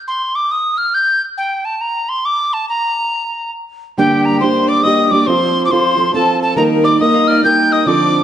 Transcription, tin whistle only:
0.08 0.37 C6 medium
0.35 0.53 D6 medium
0.51 0.79 D#6 medium
0.78 0.96 F6 loud
0.94 1.22 G6 medium
1.38 1.66 G5 medium
1.65 1.83 A5 medium
1.81 2.11 A#5 medium
2.09 2.27 C6 loud
2.25 2.55 D6 loud
2.53 2.68 A5 medium
2.69 3.51 A#5 medium
3.98 4.27 G5 medium
4.25 4.40 A#5 medium
4.40 4.66 C6 medium
4.69 4.85 D6 medium
4.83 5.13 D#6 medium
5.11 5.28 D6 medium
5.27 5.65 C6 loud
5.65 5.73 D6 medium
5.71 6.14 C6 medium
6.14 6.40 A5 loud
6.42 6.56 A5 medium
6.57 6.63 A#5 loud
6.84 6.99 D6 medium
7.01 7.29 D#6 medium
7.28 7.44 F6 loud
7.44 7.74 G6 loud
7.72 7.89 D#6 loud
7.87 8.23 D6 loud

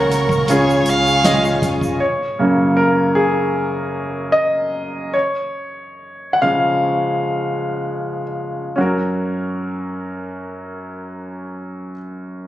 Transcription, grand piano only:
0.00 0.49 C#3 medium
0.00 0.49 C#4 loud
0.00 0.49 F#4 medium
0.00 0.50 A#4 loud
0.49 1.58 C#3 medium
0.49 1.21 C#4 medium
0.49 1.21 F4 medium
0.49 1.21 G#4 medium
1.25 1.96 C#4 medium
1.25 1.97 F4 medium
1.25 1.97 G#4 medium
1.25 1.96 D#5 medium
2.00 2.78 C#5 medium
2.39 5.10 F#2 soft
2.39 5.11 C#3 soft
2.39 5.11 A#3 soft
2.77 3.16 A#4 medium
3.15 4.36 G#4 medium
4.32 5.16 D#5 medium
5.13 6.37 C#5 medium
6.33 6.42 F#5 medium
6.42 8.73 C#3 soft
6.42 8.74 F3 soft
6.42 8.74 G#3 soft
6.42 8.23 F5 medium
8.76 11.93 F#2 soft
8.76 11.91 C#4 medium
8.76 11.93 F#4 soft
8.81 11.96 A#4 medium

